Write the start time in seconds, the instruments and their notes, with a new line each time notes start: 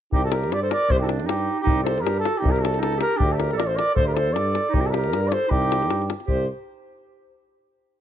0.12 tuba C2, clarinet D#4, flugelhorn G4, davul low
0.23 clarinet F#4, flugelhorn A4
0.30 clarinet G4, flugelhorn A#4, davul high
0.44 davul high
0.51 tuba G2, clarinet G4, flugelhorn D5, davul high
0.62 clarinet A4, flugelhorn C5
0.71 clarinet A#4, flugelhorn D5, davul high
0.89 tuba C2, clarinet G4, flugelhorn C5, davul low
0.98 clarinet D#4, flugelhorn G4
1.03 clarinet D4 F#4, flugelhorn G4 A4
1.09 davul high
1.20 davul high
1.26 tuba G2, clarinet D#4, flugelhorn G4, davul high
1.61 clarinet D#4, flugelhorn G4
1.66 tuba C2, davul low
1.83 clarinet A4, flugelhorn C5, davul high
1.98 clarinet G4, flugelhorn A#4, davul high
2.03 tuba G2, davul high
2.19 clarinet F#4, flugelhorn A4
2.25 davul high
2.38 clarinet D#4, flugelhorn G4
2.42 tuba C2, davul low
2.51 clarinet G4, flugelhorn A#4
2.56 clarinet F#4, davul high
2.62 flugelhorn A4, davul high
2.74 clarinet D#4, davul high
2.81 tuba C#2, flugelhorn A4, davul high
2.92 davul high
2.97 clarinet G4, davul high
3.01 flugelhorn A#4
3.12 davul high
3.16 clarinet D4, flugelhorn G4
3.20 tuba D2, davul low
3.24 clarinet F#4
3.32 clarinet G4, flugelhorn A4
3.38 flugelhorn A#4, davul high
3.51 clarinet A4, davul high
3.56 tuba A1, clarinet A#4, flugelhorn D5, davul high
3.63 clarinet A4, flugelhorn C5 D5
3.75 clarinet A#4, flugelhorn D5, davul high
3.94 tuba D2, clarinet A4, flugelhorn C5, davul low
4.05 clarinet G4, flugelhorn A#4
4.15 clarinet A4, flugelhorn C5, davul high
4.27 davul high
4.33 tuba G2, clarinet A4, flugelhorn D5, davul high
4.55 davul high
4.69 clarinet D#4
4.74 tuba C2, flugelhorn G4, davul low
4.81 clarinet F#4 G4
4.86 clarinet F#4 G4, flugelhorn A4 A#4
4.90 flugelhorn A4, davul high
4.97 flugelhorn A#4
5.04 davul high
5.13 tuba G2, davul high
5.21 clarinet A#4
5.28 clarinet A4, flugelhorn D5
5.32 flugelhorn C5, davul high
5.48 tuba C2, clarinet D#4, flugelhorn G4, davul low
5.62 davul high
5.72 davul high
5.83 davul high
5.90 tuba G2, davul high
6.02 davul high
6.10 davul high
6.20 davul high
6.26 tuba C2, clarinet G4, flugelhorn C5, davul low